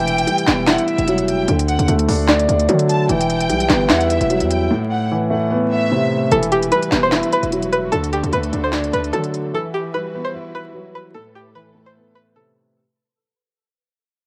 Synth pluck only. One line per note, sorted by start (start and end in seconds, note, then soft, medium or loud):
6.32 6.47 A4 medium
6.52 6.67 G4 medium
6.72 7.01 B4 medium
7.03 7.10 C5 medium
7.33 7.70 B4 medium
7.73 7.88 B4 medium
7.92 8.07 A4 loud
8.13 8.28 G4 medium
8.33 8.62 B4 medium
8.64 8.71 C5 medium
8.93 9.08 B4 medium
9.13 9.51 A4 medium
9.54 9.69 A4 medium
9.74 9.89 G4 medium
9.94 10.23 B4 medium
10.24 10.32 C5 medium
10.55 10.92 B4 medium
10.95 11.10 B4 medium
11.14 11.30 A4 loud
11.35 11.50 G4 medium
11.55 11.84 B4 medium
11.86 11.93 C5 medium
12.15 12.30 B4 medium
12.36 12.74 A4 medium